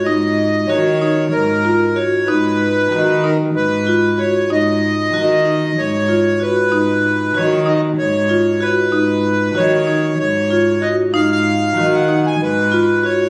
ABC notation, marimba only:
X:1
M:7/8
L:1/8
Q:1/4=95
K:G#dor
V:1 name="Marimba"
D2 F D2 E F | D2 F D2 E F | D2 F D2 E F | D2 F D2 E F |
D2 F D2 E F | D2 F D2 E F |]